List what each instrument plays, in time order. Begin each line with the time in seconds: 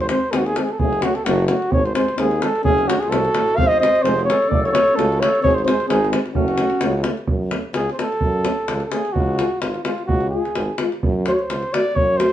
Already playing: tuba G#1
0.00 flugelhorn C5, davul high
0.09 euphonium G#3 C4, flugelhorn C5, davul high
0.32 tuba D#2, euphonium G#3 C4, flugelhorn G#4, davul high
0.37 flugelhorn F#4
0.46 flugelhorn G#4, davul high
0.56 euphonium G#3 C4, flugelhorn A4, davul high
0.63 flugelhorn G#4
0.69 flugelhorn A4, davul high
0.79 tuba F#1, euphonium A3 C#4, flugelhorn G#4, davul low
0.93 davul high
1.02 euphonium A3 C#4, flugelhorn F#4, davul high
1.15 flugelhorn A4, davul high
1.25 tuba F#1, euphonium A3 C#4, flugelhorn F#4, davul high
1.39 davul high
1.47 euphonium A3 C#4, flugelhorn F#4, davul high
1.62 davul high
1.70 tuba G#1, euphonium G#3 C4, flugelhorn C#5, davul low
1.86 flugelhorn C5, davul high
1.95 euphonium G#3 C4, flugelhorn C5, davul high
2.08 davul high
2.17 tuba D#2, euphonium G#3 C4, flugelhorn G#4, davul high
2.31 davul high
2.39 euphonium C4, davul high
2.44 euphonium G#3, flugelhorn A4
2.55 davul high
2.63 tuba F#1, euphonium A3 C#4, clarinet C#4, flugelhorn G#4, davul low
2.78 davul high
2.86 euphonium A3 C#4, flugelhorn F#4, davul high
2.93 clarinet D4
3.00 flugelhorn G#4, davul high
3.04 clarinet F4
3.08 tuba C2, euphonium C#4, flugelhorn A4
3.12 euphonium A3, clarinet F#4, davul high
3.25 davul high
3.33 tuba A1, euphonium A3 C#4, davul high
3.48 davul high
3.56 tuba G#1, euphonium G#3 C4, clarinet C5, flugelhorn F5, davul low
3.68 flugelhorn D#5, davul high
3.73 clarinet C5
3.80 euphonium G#3 C4, flugelhorn D#5, davul high
3.84 clarinet C5
3.95 davul high
4.02 tuba F1, euphonium G#3 C4, flugelhorn C5, davul high
4.09 clarinet G#4
4.19 davul high
4.24 euphonium G#3 C4, flugelhorn C#5
4.30 clarinet A4, davul high
4.42 davul high
4.48 tuba F#1, euphonium A3 C#4, flugelhorn D5, davul low
4.53 clarinet A4
4.63 clarinet A4, flugelhorn C#5, davul high
4.72 euphonium C#4, clarinet A4, flugelhorn C#5, davul high
4.76 euphonium A3
4.88 davul high
4.94 tuba C#2, euphonium A3 C#4, flugelhorn A4
4.99 clarinet F#4, davul high
5.12 davul high
5.19 euphonium A3 C#4, flugelhorn C#5, davul high
5.24 clarinet A4
5.35 davul high
5.42 tuba G#1, euphonium G#3 C4, clarinet G#4, flugelhorn C#5, davul low
5.55 clarinet G#4, flugelhorn C5, davul high
5.64 euphonium C4, clarinet G#4, flugelhorn C5
5.68 euphonium G#3, davul high
5.80 davul high
5.87 tuba G#1, euphonium G#3 C4, clarinet D#4, flugelhorn G#4, davul high
6.05 davul high
6.11 euphonium G#3 C4, davul high
6.26 davul high
6.33 tuba F#1, euphonium A3 C#4, clarinet C#4, flugelhorn F#4, davul low
6.48 davul high
6.57 euphonium A3 C#4, davul high
6.70 davul high
6.81 tuba C#2, euphonium A3 C#4, davul high
7.04 euphonium A3 C#4, davul high
7.17 davul high
7.27 tuba F#2, davul low
7.51 euphonium A3 C#4, davul high
7.74 tuba C#2, flugelhorn G#4, davul high
7.90 flugelhorn C5, davul high
7.98 euphonium A3 C#4, flugelhorn A4, davul high
8.12 davul high
8.21 tuba F#2, davul low
8.45 euphonium A3 C#4, davul high
8.68 tuba C#2, davul high
8.80 davul high
8.86 flugelhorn A4
8.91 euphonium A3 C#4, flugelhorn G#4, davul high
9.05 davul high
9.13 tuba C#2, flugelhorn F#4, davul low
9.39 euphonium G#3 F4, davul high
9.60 tuba G#1, flugelhorn F4, davul high
9.74 davul high
9.84 euphonium G#3 F4, flugelhorn F4, davul high
9.98 davul high
10.06 tuba C#2, flugelhorn F#4, davul low
10.21 davul high
10.30 euphonium G#3, flugelhorn G#4
10.34 euphonium F4
10.45 davul high
10.55 tuba G#1, davul high
10.78 euphonium G#3 F4, davul high
10.92 davul high
11.03 tuba F#2, davul low
11.26 euphonium A3 F#4, flugelhorn C5, davul high
11.31 flugelhorn C#5
11.40 flugelhorn C5
11.49 tuba C#2, davul high
11.63 davul high
11.73 euphonium A3 F#4, flugelhorn D5, davul high
11.95 tuba F#2, flugelhorn C#5, davul low
12.17 euphonium A3 F#4, flugelhorn C5, davul high